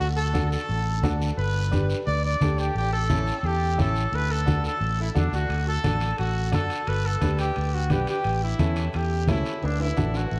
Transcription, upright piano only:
0.33 D4 F#4 A4
1.03 D4 F#4 A4
1.72 D4 G4 B4
2.41 D4 G4 A4
3.09 C#4 E4 A4
3.78 C#4 E4 A4
4.46 D4 F#4 A4
5.15 D4 F#4 A4
5.84 D4 F#4 A4
6.52 D4 F#4 A4
7.21 D4 G4 B4
7.90 D4 G4 B4
8.59 C#4 E4 A4
9.28 C#4 E4 A4
9.97 D4 F#4 A4

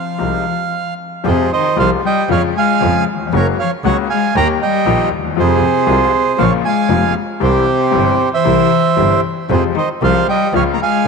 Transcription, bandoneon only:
Already playing: F5
1.27 G#4 C5
1.53 C5 D#5
1.79 C5 F5
2.06 D#5 G5
2.31 C#5 F5
2.57 F5 G#5
3.36 A#4 C#5
3.59 C#5 F5
3.85 C#5 F#5
4.10 F5 G#5
4.37 G5 A#5
4.62 D#5 G5
5.39 G#4 C5
6.39 C#5 F5
6.65 F5 G#5
7.43 G4 C5
8.34 C5 E5
9.52 G#4 C5
9.78 C5 D#5
10.04 C5 F5
10.29 D#5 G5
10.55 C#5 F5
10.74 A#5
10.83 F5 G#5

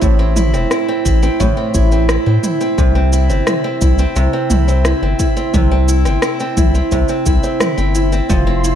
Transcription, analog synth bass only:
0.02 A1
0.54 E1
1.05 A1
1.40 A1
1.75 A1
2.27 A2
2.78 C2
3.29 G1
3.82 C2
4.16 C2
4.51 C2
5.02 G1
5.54 C2
6.06 G1
6.57 C2
6.92 C2
7.26 C2
7.78 G1
8.30 F1

